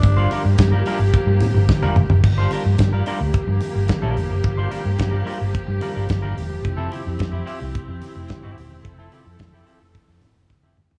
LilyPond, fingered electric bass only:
\new Staff \with { instrumentName = "Fingered electric bass" } { \clef bass \time 4/4 \key g \dorian \tempo 4 = 109 g,,8 r16 g,16 g,8 r16 g,,16 r16 g,16 r16 g,,16 r16 e,,16 f,,16 fis,,16 | g,,8 r16 g,16 g,8 r16 d,16 r16 g,16 r16 g,,16 r16 bes,,16 f,,16 fis,,16 | g,,8 r16 g,16 g,8 r16 g,,16 r16 g,16 r16 g,,16 g,,8 e,,8 | f,,8 r16 f,16 f,8 r16 c,16 r16 f,16 r16 f,,16 r16 g,,16 ees,,16 e,,16 |
f,,8 r16 f,16 f,8 r16 f,,16 r16 f,16 r16 f,,16 f,,8 e,,8 | }